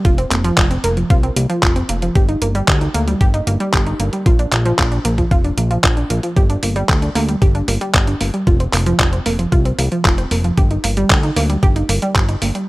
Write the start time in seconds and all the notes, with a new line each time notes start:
0.05 F1 F4, kick, closed hi-hat
0.18 C4, closed hi-hat
0.31 F1 A#3, clap, closed hi-hat
0.44 F3, closed hi-hat
0.57 F1 F4, kick, clap, closed hi-hat
0.71 C4, closed hi-hat
0.84 F1 A#3, closed hi-hat
0.97 F3, closed hi-hat
1.10 C2 F4, kick, closed hi-hat
1.23 C4, closed hi-hat
1.36 C2 A#3, closed hi-hat
1.50 F3, closed hi-hat
1.63 F1 F4, kick, clap, closed hi-hat
1.76 C4, closed hi-hat
1.89 F1 A#3, closed hi-hat
2.02 F3, closed hi-hat
2.15 G1 G4, kick, closed hi-hat
2.29 D#4, closed hi-hat
2.42 G1 A#3, closed hi-hat
2.55 G3, closed hi-hat
2.68 D2 G4, kick, clap, closed hi-hat
2.81 D#4, closed hi-hat
2.94 D2 A#3, closed hi-hat
3.08 G3, closed hi-hat
3.21 G1 G4, kick, closed hi-hat
3.34 D#4, closed hi-hat
3.47 G1 A#3, closed hi-hat
3.60 G3, closed hi-hat
3.73 G1 G4, kick, clap, closed hi-hat
3.87 D#4, closed hi-hat
4.00 G1 A#3, closed hi-hat
4.13 G3, closed hi-hat
4.26 A#1 F4, kick, closed hi-hat
4.39 D4, closed hi-hat
4.52 A#1 A#3, clap, closed hi-hat
4.65 F3, closed hi-hat
4.79 A#1 F4, kick, clap, closed hi-hat
4.92 D4, closed hi-hat
5.05 A#1 A#3, closed hi-hat
5.18 F3, kick, closed hi-hat
5.31 F1 F4, kick, closed hi-hat
5.44 D4, closed hi-hat
5.58 A#1 A#3, closed hi-hat
5.71 F3, closed hi-hat
5.84 A#1 F4, kick, clap, closed hi-hat
5.97 D4, closed hi-hat
6.10 A#1 A#3, closed hi-hat
6.23 F3, closed hi-hat
6.36 G1 G4, kick, closed hi-hat
6.50 D4, closed hi-hat
6.63 G1 A#3, open hi-hat
6.76 G3, closed hi-hat
6.89 D2 G4, kick, clap, closed hi-hat
7.02 D4, closed hi-hat
7.15 D2 A#3, open hi-hat
7.29 G3, closed hi-hat
7.42 G1 G4, kick, closed hi-hat
7.55 D4, closed hi-hat
7.68 G1 A#3, open hi-hat
7.81 G3, closed hi-hat
7.94 G1 G4, kick, clap, closed hi-hat
8.07 D4, closed hi-hat
8.21 G1 A#3, open hi-hat
8.34 G3, closed hi-hat
8.47 F1 F4, kick, closed hi-hat
8.60 C4, closed hi-hat
8.73 F1 A#3, clap, open hi-hat
8.86 F3, closed hi-hat
9.00 F1 F4, kick, clap, closed hi-hat
9.13 C4, closed hi-hat
9.26 F1 A#3, open hi-hat
9.39 F3, closed hi-hat
9.52 C2 F4, kick, closed hi-hat
9.65 C4, closed hi-hat
9.78 C2 A#3, open hi-hat
9.92 F3, closed hi-hat
10.05 F1 F4, kick, clap, closed hi-hat
10.18 C4, closed hi-hat
10.31 F1 A#3, open hi-hat
10.44 F3, closed hi-hat
10.57 G1 G4, kick, closed hi-hat
10.71 D#4, closed hi-hat
10.84 G1 A#3, open hi-hat
10.97 G3, closed hi-hat
11.10 D2 G4, kick, clap, closed hi-hat
11.23 D#4, closed hi-hat
11.36 D2 A#3, open hi-hat
11.50 G3, closed hi-hat
11.63 G1 G4, kick, closed hi-hat
11.76 D#4, closed hi-hat
11.89 G1 A#3, open hi-hat
12.02 G3, closed hi-hat
12.15 G1 G4, kick, clap, closed hi-hat
12.29 D#4, closed hi-hat
12.42 G1 A#3, open hi-hat
12.55 G3, closed hi-hat